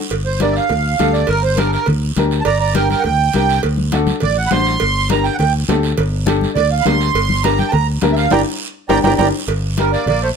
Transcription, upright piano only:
0.41 D4 G4 A#4
0.99 D4 G4 A4
1.57 D4 G4 A#4
2.17 D4 G4 A#4
2.74 D4 G4 A#4
3.35 D4 G4 A#4
3.93 D4 F#4 A4
4.51 D4 F#4 C5
5.11 D4 G4 A#4
5.68 D4 G4 A4
6.26 D4 G4 A4
6.85 D4 G4 A#4
7.44 D4 G4 A#4
8.03 D4 G4 A#4
8.32 D4 G4 A#4
8.89 D4 G4 A#4
9.05 D4 G4 A#4
9.21 D4 G4 A#4
9.79 D4 G4 A#4

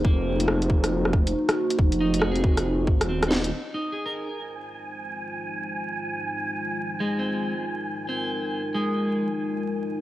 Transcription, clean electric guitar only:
0.05 A#3
2.00 D#4
2.19 F#4
2.32 G#4
3.09 C4
3.28 D#4
3.74 D#4
3.92 G#4
4.06 A#4
7.00 G#3
7.19 C4
8.09 C4
8.74 G#3

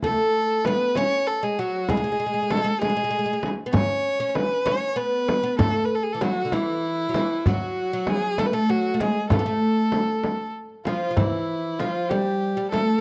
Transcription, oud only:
0.04 A3
0.67 B3
0.97 C#4
1.43 G#3
1.59 F#3
1.90 G#3
1.97 G#3
2.04 G#3
2.12 G#3
2.20 G#3
2.26 G#3
2.34 G#3
2.42 G#3
2.50 G#3
2.57 G#3
2.64 G#3
2.81 G#3
2.89 G#3
2.97 G#3
3.04 G#3
3.11 G#3
3.19 G#3
3.26 G#3
3.33 G#3
3.66 B3
3.73 C#4
4.20 C#4
4.66 C#4
4.96 B3
5.43 B3
5.59 A3
6.15 E3
6.22 F#3
6.45 D3
6.53 E3
7.09 F#3
7.16 E3
7.47 F#3
7.93 F#3
8.39 A3
8.53 A3
8.69 F#3
8.94 A3
9.01 G#3
9.32 A3
9.39 B3
9.46 A3
10.87 F3
11.11 F3
11.17 E3
11.80 F3
12.11 G3
12.57 G3
12.73 A3

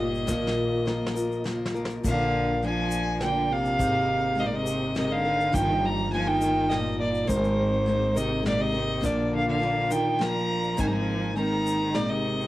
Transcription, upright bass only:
Already playing: G1
0.29 A#1
2.04 A#1
3.80 G#1
5.54 G1
7.29 G#1
9.04 A#1
10.79 G#1

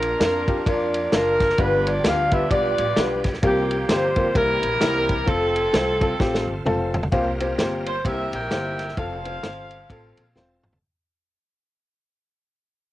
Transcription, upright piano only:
Already playing: A#2
0.19 D4 F4 A#4
0.48 D4 F4 G4
0.66 D4 F4 A#4
1.12 D4 F4 A#4
1.58 G2 G3 B3 D4 F4 B4
2.04 G3 B3 D4 F4 G4
2.32 G3 B3 D4 F4 B4
2.50 G3 B3 D4 F4 D5
2.96 G3 B3 D4 F4 B4
3.42 C3 G3 A#3 C4 F4 A#4
3.88 G3 A#3 C4 F4 C5
4.16 G3 A#3 C4 F4 A#4
4.34 C3 G3 A#3 C4 E4 A#4
4.81 G3 A#3 C4 E4 A#4
5.26 C4 F4 A4
5.73 C4 F4 C5
6.00 C4 F4 A4
6.20 C4 F4 G4
6.65 C4 F4 A4
7.12 C3 A#3 C4 F4 G4 C5
7.40 A#3 C4 F4 G4 C5
7.58 A#3 C4 F4 G4 C5
8.04 C3 A#3 C4 E4 G4 C5
8.51 A#3 C4 E4 G4 C5
8.97 C4 F4 A4
9.25 C4 F4 C5
9.43 C4 F4 C5
9.90 C4 F4 A4
10.36 C4 F4 C5

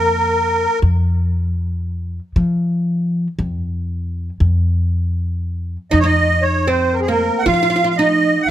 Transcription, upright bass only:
Already playing: F2
0.82 F2
2.36 F3
3.39 F2
4.40 F2
5.93 F2
7.46 F3

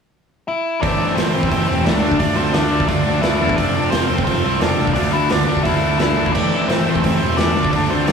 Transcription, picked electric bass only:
0.83 A1
1.17 A1
1.35 A1
1.52 A1
1.70 E1
1.86 C#2
2.03 D2
2.20 D2
2.36 D2
2.54 D2
2.72 D2
2.89 D2
3.07 D2
3.24 D2
3.41 E2
3.58 F1
3.92 F1
4.10 F1
4.27 F1
4.44 C2
4.62 F1
4.79 C2
4.96 D2
5.13 D2
5.31 D2
5.48 D2
5.66 D2
5.82 D2
6.00 D2
6.17 D2
6.35 A1
6.69 A1
6.86 A1
7.04 A1
7.21 E1
7.38 E2
7.56 D2
7.73 D2
7.90 D2
8.08 D2

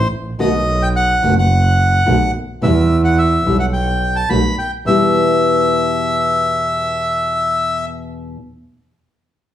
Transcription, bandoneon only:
0.40 D#5
0.83 G5
0.96 F#5
1.39 F#5
2.63 E5
3.04 F#5
3.18 E5
3.60 F#5
3.73 G5
4.16 A5
4.30 B5
4.59 G5
4.87 E5

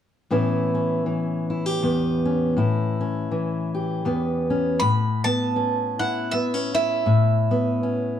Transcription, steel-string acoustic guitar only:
0.31 A2 E3 B3 C#4 E4
0.74 C#4
1.06 E3
1.50 E4
1.66 G4
1.83 E2 B3
2.25 C#4
2.57 A2 E4
3.01 C#4
3.31 E3
3.75 G4
4.05 E2 B3
4.50 C#4
4.82 A2
5.25 B3
5.56 C#4
6.00 E4
6.33 B3
6.54 C#4
6.75 E4
7.06 A2
7.51 B3
7.83 C#4

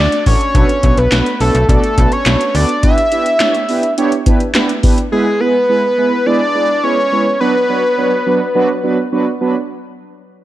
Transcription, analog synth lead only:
Already playing: D5
0.27 C#5
0.98 B4
1.41 A4
1.70 A4
2.12 C#5
2.55 D5
2.84 E5
5.12 G#4
5.40 B4
6.26 D5
6.83 C#5
7.41 B4

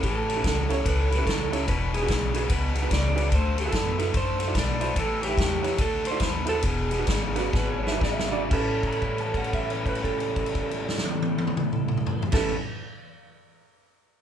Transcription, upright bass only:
0.03 A1
0.44 C#2
0.86 C#2
1.27 C#2
1.68 E1
2.09 B1
2.50 C#2
2.91 C#2
3.32 D2
3.73 F#2
4.15 F#2
4.55 B1
4.96 A1
5.37 E2
5.79 D2
6.20 D#2
6.63 E1
7.08 G#1
7.53 G#1
8.01 G#1
8.51 A1
12.33 A1

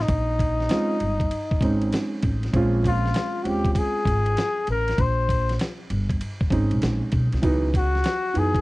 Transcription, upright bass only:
0.09 A#1
1.01 G1
1.61 G#1
2.23 A1
2.53 A#1
3.45 D#2
4.05 G#1
4.68 A1
4.98 A#1
5.90 G1
6.50 G#1
6.71 A#1
6.82 A#1
7.13 B1
7.33 C2
7.43 C#2
8.36 F#2

